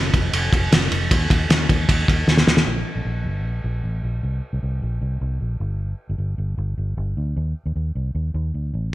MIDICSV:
0, 0, Header, 1, 3, 480
1, 0, Start_track
1, 0, Tempo, 391134
1, 1359, Time_signature, 4, 2, 24, 8
1, 10972, End_track
2, 0, Start_track
2, 0, Title_t, "Fingered electric bass"
2, 0, Program_c, 0, 33
2, 168, Note_on_c, 0, 29, 99
2, 363, Note_off_c, 0, 29, 0
2, 405, Note_on_c, 0, 29, 106
2, 600, Note_off_c, 0, 29, 0
2, 646, Note_on_c, 0, 29, 102
2, 840, Note_off_c, 0, 29, 0
2, 881, Note_on_c, 0, 29, 97
2, 1077, Note_off_c, 0, 29, 0
2, 1121, Note_on_c, 0, 29, 93
2, 1317, Note_off_c, 0, 29, 0
2, 1361, Note_on_c, 0, 39, 99
2, 1556, Note_off_c, 0, 39, 0
2, 1599, Note_on_c, 0, 39, 107
2, 1794, Note_off_c, 0, 39, 0
2, 1835, Note_on_c, 0, 39, 112
2, 2032, Note_off_c, 0, 39, 0
2, 2079, Note_on_c, 0, 39, 104
2, 2274, Note_off_c, 0, 39, 0
2, 2317, Note_on_c, 0, 39, 98
2, 2513, Note_off_c, 0, 39, 0
2, 2557, Note_on_c, 0, 39, 92
2, 2753, Note_off_c, 0, 39, 0
2, 2788, Note_on_c, 0, 39, 100
2, 2987, Note_off_c, 0, 39, 0
2, 3033, Note_on_c, 0, 39, 83
2, 3230, Note_off_c, 0, 39, 0
2, 3266, Note_on_c, 0, 34, 84
2, 3466, Note_off_c, 0, 34, 0
2, 3626, Note_on_c, 0, 34, 78
2, 3728, Note_off_c, 0, 34, 0
2, 3745, Note_on_c, 0, 34, 77
2, 3984, Note_on_c, 0, 31, 75
2, 4003, Note_off_c, 0, 34, 0
2, 4227, Note_off_c, 0, 31, 0
2, 4227, Note_on_c, 0, 34, 91
2, 4427, Note_off_c, 0, 34, 0
2, 4468, Note_on_c, 0, 34, 81
2, 4668, Note_off_c, 0, 34, 0
2, 4708, Note_on_c, 0, 33, 75
2, 4908, Note_off_c, 0, 33, 0
2, 4950, Note_on_c, 0, 34, 72
2, 5149, Note_off_c, 0, 34, 0
2, 5194, Note_on_c, 0, 36, 84
2, 5392, Note_off_c, 0, 36, 0
2, 5558, Note_on_c, 0, 36, 81
2, 5656, Note_off_c, 0, 36, 0
2, 5680, Note_on_c, 0, 36, 81
2, 5876, Note_off_c, 0, 36, 0
2, 5918, Note_on_c, 0, 34, 78
2, 6115, Note_off_c, 0, 34, 0
2, 6153, Note_on_c, 0, 36, 86
2, 6352, Note_off_c, 0, 36, 0
2, 6397, Note_on_c, 0, 36, 88
2, 6595, Note_off_c, 0, 36, 0
2, 6637, Note_on_c, 0, 34, 70
2, 6835, Note_off_c, 0, 34, 0
2, 6875, Note_on_c, 0, 31, 79
2, 7271, Note_off_c, 0, 31, 0
2, 7479, Note_on_c, 0, 31, 82
2, 7579, Note_off_c, 0, 31, 0
2, 7587, Note_on_c, 0, 31, 84
2, 7790, Note_off_c, 0, 31, 0
2, 7830, Note_on_c, 0, 31, 80
2, 8032, Note_off_c, 0, 31, 0
2, 8070, Note_on_c, 0, 31, 89
2, 8272, Note_off_c, 0, 31, 0
2, 8316, Note_on_c, 0, 31, 82
2, 8515, Note_off_c, 0, 31, 0
2, 8556, Note_on_c, 0, 31, 81
2, 8755, Note_off_c, 0, 31, 0
2, 8800, Note_on_c, 0, 38, 68
2, 8998, Note_off_c, 0, 38, 0
2, 9038, Note_on_c, 0, 39, 89
2, 9237, Note_off_c, 0, 39, 0
2, 9396, Note_on_c, 0, 39, 82
2, 9497, Note_off_c, 0, 39, 0
2, 9518, Note_on_c, 0, 39, 77
2, 9717, Note_off_c, 0, 39, 0
2, 9761, Note_on_c, 0, 36, 73
2, 9959, Note_off_c, 0, 36, 0
2, 9998, Note_on_c, 0, 39, 85
2, 10197, Note_off_c, 0, 39, 0
2, 10237, Note_on_c, 0, 39, 88
2, 10437, Note_off_c, 0, 39, 0
2, 10483, Note_on_c, 0, 38, 74
2, 10680, Note_off_c, 0, 38, 0
2, 10720, Note_on_c, 0, 33, 77
2, 10918, Note_off_c, 0, 33, 0
2, 10972, End_track
3, 0, Start_track
3, 0, Title_t, "Drums"
3, 168, Note_on_c, 9, 36, 86
3, 169, Note_on_c, 9, 51, 54
3, 291, Note_off_c, 9, 36, 0
3, 292, Note_off_c, 9, 51, 0
3, 410, Note_on_c, 9, 51, 74
3, 532, Note_off_c, 9, 51, 0
3, 646, Note_on_c, 9, 36, 88
3, 654, Note_on_c, 9, 51, 58
3, 768, Note_off_c, 9, 36, 0
3, 777, Note_off_c, 9, 51, 0
3, 889, Note_on_c, 9, 51, 78
3, 891, Note_on_c, 9, 38, 108
3, 1011, Note_off_c, 9, 51, 0
3, 1014, Note_off_c, 9, 38, 0
3, 1124, Note_on_c, 9, 51, 57
3, 1247, Note_off_c, 9, 51, 0
3, 1364, Note_on_c, 9, 36, 107
3, 1365, Note_on_c, 9, 51, 75
3, 1486, Note_off_c, 9, 36, 0
3, 1487, Note_off_c, 9, 51, 0
3, 1599, Note_on_c, 9, 36, 97
3, 1606, Note_on_c, 9, 51, 62
3, 1722, Note_off_c, 9, 36, 0
3, 1728, Note_off_c, 9, 51, 0
3, 1844, Note_on_c, 9, 51, 71
3, 1849, Note_on_c, 9, 38, 120
3, 1967, Note_off_c, 9, 51, 0
3, 1971, Note_off_c, 9, 38, 0
3, 2079, Note_on_c, 9, 36, 93
3, 2080, Note_on_c, 9, 51, 54
3, 2202, Note_off_c, 9, 36, 0
3, 2203, Note_off_c, 9, 51, 0
3, 2317, Note_on_c, 9, 36, 94
3, 2319, Note_on_c, 9, 51, 79
3, 2440, Note_off_c, 9, 36, 0
3, 2442, Note_off_c, 9, 51, 0
3, 2556, Note_on_c, 9, 36, 84
3, 2568, Note_on_c, 9, 51, 55
3, 2679, Note_off_c, 9, 36, 0
3, 2691, Note_off_c, 9, 51, 0
3, 2794, Note_on_c, 9, 38, 61
3, 2914, Note_off_c, 9, 38, 0
3, 2914, Note_on_c, 9, 38, 64
3, 3037, Note_off_c, 9, 38, 0
3, 3037, Note_on_c, 9, 38, 102
3, 3153, Note_off_c, 9, 38, 0
3, 3153, Note_on_c, 9, 38, 95
3, 3276, Note_off_c, 9, 38, 0
3, 10972, End_track
0, 0, End_of_file